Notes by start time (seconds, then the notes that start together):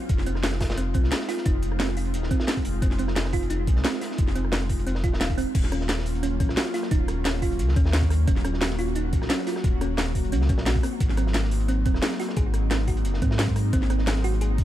Already playing: G#3 C4 D#4 F4
0.09 F1, kick, closed hi-hat
0.18 snare
0.26 C4, closed hi-hat
0.35 cross-stick, snare
0.43 snare, closed hi-hat
0.52 cross-stick, snare
0.61 kick, snare, closed hi-hat, open hi-hat
0.70 snare, closed hi-hat
0.77 C4, closed hi-hat
0.94 C2 C4, kick, closed hi-hat
1.04 snare
1.12 G#4, snare, closed hi-hat
1.20 snare
1.28 F4, snare, closed hi-hat, open hi-hat
1.37 snare
1.45 F1 D#4, kick, closed hi-hat
1.62 closed hi-hat
1.72 cross-stick
1.80 C4, snare, closed hi-hat
1.89 cross-stick
1.97 F4, closed hi-hat, open hi-hat
2.05 closed hi-hat
2.14 D#1, closed hi-hat
2.23 snare
2.31 C4, kick, closed hi-hat
2.40 snare
2.48 snare, closed hi-hat
2.57 kick, closed hi-hat
2.65 F1, closed hi-hat, open hi-hat
2.82 F1 C4, kick, closed hi-hat
2.91 snare
2.98 C4, closed hi-hat
3.08 cross-stick, snare
3.16 G#4, snare, closed hi-hat
3.25 cross-stick, snare
3.33 F4, kick, closed hi-hat, open hi-hat
3.43 closed hi-hat
3.50 D#4, closed hi-hat
3.67 C2, kick, closed hi-hat
3.76 snare
3.84 C4, snare, closed hi-hat
3.94 snare
4.01 F4, snare, closed hi-hat, open hi-hat
4.11 snare
4.18 F1, kick, closed hi-hat
4.27 snare
4.35 C4, closed hi-hat
4.45 cross-stick
4.52 snare, closed hi-hat
4.62 cross-stick
4.69 kick, closed hi-hat, open hi-hat
4.79 closed hi-hat
4.87 C4, closed hi-hat
4.95 snare
5.04 D#1 F4, kick, closed hi-hat
5.14 snare
5.21 F5, snare, closed hi-hat
5.30 kick, closed hi-hat
5.38 C4, closed hi-hat, open hi-hat
5.55 D#1 F#3 A#3 C#4 F4, kick, closed hi-hat, crash
5.64 snare
5.72 C#4, cross-stick, closed hi-hat
5.81 snare
5.89 snare, closed hi-hat
5.99 snare
6.06 closed hi-hat, open hi-hat
6.15 closed hi-hat
6.23 C#4, closed hi-hat
6.40 A#1 C#4, kick, closed hi-hat
6.49 cross-stick, snare
6.57 F#4, snare, closed hi-hat
6.66 snare
6.74 F4, snare, closed hi-hat, open hi-hat
6.83 cross-stick, snare
6.91 D#1 D#4, kick, closed hi-hat
7.08 cross-stick, closed hi-hat
7.25 C#4, snare, closed hi-hat
7.42 F4, kick, closed hi-hat, open hi-hat
7.52 closed hi-hat
7.59 C#2, closed hi-hat
7.68 snare
7.76 D#2 C#4, kick, closed hi-hat
7.86 snare
7.93 snare, closed hi-hat
8.02 kick, closed hi-hat
8.10 cross-stick, closed hi-hat, open hi-hat
8.27 D#1 C#4 F#4, kick, closed hi-hat
8.36 snare
8.45 C#4, cross-stick, closed hi-hat
8.54 snare
8.61 F#4, snare, closed hi-hat
8.70 snare
8.79 F4, closed hi-hat, open hi-hat
8.88 closed hi-hat
8.95 D#4, closed hi-hat
9.13 A#1, kick, closed hi-hat
9.22 cross-stick, snare
9.29 C#4, snare, closed hi-hat
9.39 snare
9.47 F4, snare, closed hi-hat, open hi-hat
9.56 cross-stick, snare
9.64 D#1, kick, closed hi-hat
9.81 C#4, cross-stick, closed hi-hat
9.98 snare, closed hi-hat
10.15 kick, closed hi-hat, open hi-hat
10.24 closed hi-hat
10.32 C#2 C#4, closed hi-hat
10.41 snare
10.49 A#1 C#4, kick, closed hi-hat
10.58 snare
10.66 F#4, snare, closed hi-hat
10.75 kick, closed hi-hat
10.83 C4 D#4, cross-stick, closed hi-hat, open hi-hat
11.00 G#1, kick, closed hi-hat
11.09 snare
11.17 C4, cross-stick, closed hi-hat
11.27 snare
11.34 snare, closed hi-hat
11.44 snare
11.51 closed hi-hat, open hi-hat
11.60 closed hi-hat
11.68 C4, closed hi-hat
11.85 D#1 C4, kick, closed hi-hat
11.94 cross-stick, snare
12.02 G#4, snare, closed hi-hat
12.12 snare
12.19 F#4, snare, closed hi-hat, open hi-hat
12.29 cross-stick, snare
12.36 G#1 G#4, kick, closed hi-hat
12.54 cross-stick, closed hi-hat
12.71 C4, snare, closed hi-hat
12.87 F#4, kick, closed hi-hat, open hi-hat
12.97 closed hi-hat
13.05 F#1, closed hi-hat
13.14 snare
13.22 G#2 C4, kick, closed hi-hat
13.31 snare
13.39 snare, closed hi-hat
13.48 kick, closed hi-hat
13.56 cross-stick, closed hi-hat, open hi-hat
13.73 G#1 C4, kick, closed hi-hat
13.82 snare
13.90 C4, cross-stick, closed hi-hat
13.98 snare
14.07 G#4, snare, closed hi-hat
14.16 snare
14.24 F#4, closed hi-hat, open hi-hat
14.34 closed hi-hat
14.41 G#4, closed hi-hat
14.58 D#1, kick, closed hi-hat